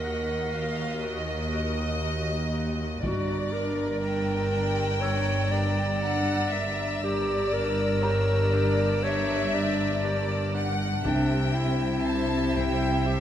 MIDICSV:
0, 0, Header, 1, 10, 480
1, 0, Start_track
1, 0, Tempo, 998336
1, 1456, Time_signature, 4, 2, 24, 8
1, 3859, Tempo, 1006711
1, 6326, End_track
2, 0, Start_track
2, 0, Title_t, "Violin section"
2, 0, Program_c, 0, 48
2, 0, Note_on_c, 0, 94, 29
2, 0, Note_on_c, 0, 95, 28
2, 716, Note_off_c, 0, 95, 0
2, 1199, Note_off_c, 0, 94, 0
2, 1450, Note_on_c, 0, 82, 40
2, 1936, Note_on_c, 0, 88, 39
2, 5036, Note_off_c, 0, 82, 0
2, 5038, Note_off_c, 0, 88, 0
2, 5297, Note_on_c, 0, 88, 41
2, 5778, Note_on_c, 0, 91, 37
2, 6326, Note_off_c, 0, 88, 0
2, 6326, Note_off_c, 0, 91, 0
2, 6326, End_track
3, 0, Start_track
3, 0, Title_t, "Grand piano"
3, 0, Program_c, 1, 0
3, 0, Control_c, 1, 64, 127
3, 1465, Control_c, 1, 64, 0
3, 1556, Control_c, 1, 64, 127
3, 2416, Note_on_c, 1, 88, 41
3, 3839, Note_off_c, 1, 88, 0
3, 3861, Note_on_c, 1, 82, 48
3, 3862, Note_on_c, 1, 67, 34
3, 5279, Note_off_c, 1, 67, 0
3, 5279, Note_off_c, 1, 82, 0
3, 5305, Control_c, 1, 64, 0
3, 5380, Control_c, 1, 64, 127
3, 6326, End_track
4, 0, Start_track
4, 0, Title_t, "Violin section"
4, 0, Program_c, 2, 48
4, 16, Note_on_c, 2, 78, 42
4, 256, Note_on_c, 2, 77, 47
4, 257, Note_off_c, 2, 78, 0
4, 492, Note_on_c, 2, 75, 54
4, 494, Note_off_c, 2, 77, 0
4, 1453, Note_on_c, 2, 74, 53
4, 1455, Note_off_c, 2, 75, 0
4, 1930, Note_on_c, 2, 79, 55
4, 1937, Note_off_c, 2, 74, 0
4, 2892, Note_on_c, 2, 78, 65
4, 2893, Note_off_c, 2, 79, 0
4, 3129, Note_on_c, 2, 76, 54
4, 3131, Note_off_c, 2, 78, 0
4, 3372, Note_on_c, 2, 74, 60
4, 3375, Note_off_c, 2, 76, 0
4, 3855, Note_off_c, 2, 74, 0
4, 3855, Note_on_c, 2, 73, 51
4, 4097, Note_off_c, 2, 73, 0
4, 4097, Note_on_c, 2, 74, 59
4, 4340, Note_off_c, 2, 74, 0
4, 4342, Note_on_c, 2, 76, 63
4, 4820, Note_off_c, 2, 76, 0
4, 4823, Note_on_c, 2, 74, 55
4, 5060, Note_off_c, 2, 74, 0
4, 5067, Note_on_c, 2, 78, 58
4, 5297, Note_off_c, 2, 78, 0
4, 5303, Note_on_c, 2, 79, 57
4, 5774, Note_on_c, 2, 81, 53
4, 5778, Note_off_c, 2, 79, 0
4, 6015, Note_off_c, 2, 81, 0
4, 6020, Note_on_c, 2, 79, 58
4, 6262, Note_off_c, 2, 79, 0
4, 6262, Note_on_c, 2, 76, 55
4, 6326, Note_off_c, 2, 76, 0
4, 6326, End_track
5, 0, Start_track
5, 0, Title_t, "Violin section"
5, 0, Program_c, 3, 48
5, 0, Note_on_c, 3, 75, 46
5, 1436, Note_off_c, 3, 75, 0
5, 1450, Note_on_c, 3, 74, 54
5, 3358, Note_off_c, 3, 74, 0
5, 3380, Note_on_c, 3, 74, 56
5, 5278, Note_off_c, 3, 74, 0
5, 5298, Note_on_c, 3, 76, 58
5, 6326, Note_off_c, 3, 76, 0
5, 6326, End_track
6, 0, Start_track
6, 0, Title_t, "Clarinet"
6, 0, Program_c, 4, 71
6, 0, Note_on_c, 4, 70, 62
6, 1221, Note_off_c, 4, 70, 0
6, 1459, Note_on_c, 4, 66, 67
6, 1696, Note_on_c, 4, 70, 77
6, 1703, Note_off_c, 4, 66, 0
6, 2408, Note_on_c, 4, 73, 84
6, 2416, Note_off_c, 4, 70, 0
6, 2652, Note_on_c, 4, 74, 77
6, 2659, Note_off_c, 4, 73, 0
6, 3377, Note_off_c, 4, 74, 0
6, 3383, Note_on_c, 4, 67, 78
6, 3621, Note_on_c, 4, 70, 84
6, 3628, Note_off_c, 4, 67, 0
6, 4338, Note_on_c, 4, 73, 90
6, 4345, Note_off_c, 4, 70, 0
6, 4584, Note_on_c, 4, 74, 74
6, 4591, Note_off_c, 4, 73, 0
6, 5167, Note_off_c, 4, 74, 0
6, 5303, Note_on_c, 4, 62, 76
6, 5538, Note_on_c, 4, 64, 61
6, 5545, Note_off_c, 4, 62, 0
6, 6262, Note_on_c, 4, 67, 71
6, 6269, Note_off_c, 4, 64, 0
6, 6326, Note_off_c, 4, 67, 0
6, 6326, End_track
7, 0, Start_track
7, 0, Title_t, "Synth texture"
7, 0, Program_c, 5, 99
7, 0, Note_on_c, 5, 66, 47
7, 0, Note_on_c, 5, 70, 50
7, 0, Note_on_c, 5, 75, 49
7, 1438, Note_off_c, 5, 70, 0
7, 1439, Note_off_c, 5, 66, 0
7, 1440, Note_off_c, 5, 75, 0
7, 1453, Note_on_c, 5, 62, 52
7, 1457, Note_on_c, 5, 82, 48
7, 1459, Note_on_c, 5, 70, 48
7, 3362, Note_off_c, 5, 70, 0
7, 3374, Note_off_c, 5, 62, 0
7, 3375, Note_on_c, 5, 67, 50
7, 3379, Note_on_c, 5, 70, 52
7, 3380, Note_on_c, 5, 62, 55
7, 3381, Note_off_c, 5, 82, 0
7, 5276, Note_off_c, 5, 67, 0
7, 5278, Note_off_c, 5, 62, 0
7, 5278, Note_off_c, 5, 70, 0
7, 5295, Note_on_c, 5, 72, 53
7, 5295, Note_on_c, 5, 76, 52
7, 6326, Note_off_c, 5, 72, 0
7, 6326, Note_off_c, 5, 76, 0
7, 6326, End_track
8, 0, Start_track
8, 0, Title_t, "Cello section"
8, 0, Program_c, 6, 48
8, 0, Note_on_c, 6, 39, 49
8, 1438, Note_off_c, 6, 39, 0
8, 1452, Note_on_c, 6, 43, 50
8, 3372, Note_off_c, 6, 43, 0
8, 3378, Note_on_c, 6, 43, 58
8, 5277, Note_off_c, 6, 43, 0
8, 5302, Note_on_c, 6, 48, 57
8, 6326, Note_off_c, 6, 48, 0
8, 6326, End_track
9, 0, Start_track
9, 0, Title_t, "Double bass section"
9, 0, Program_c, 7, 48
9, 0, Note_on_c, 7, 39, 48
9, 1438, Note_off_c, 7, 39, 0
9, 1457, Note_on_c, 7, 31, 54
9, 3372, Note_off_c, 7, 31, 0
9, 3378, Note_on_c, 7, 31, 63
9, 5277, Note_off_c, 7, 31, 0
9, 5302, Note_on_c, 7, 36, 57
9, 6326, Note_off_c, 7, 36, 0
9, 6326, End_track
10, 0, Start_track
10, 0, Title_t, "Taiko and cinematic ensemble drums"
10, 1457, Note_on_c, 9, 41, 54
10, 1505, Note_off_c, 9, 41, 0
10, 5302, Note_on_c, 9, 41, 57
10, 5349, Note_off_c, 9, 41, 0
10, 6022, Note_on_c, 9, 41, 32
10, 6070, Note_off_c, 9, 41, 0
10, 6326, End_track
0, 0, End_of_file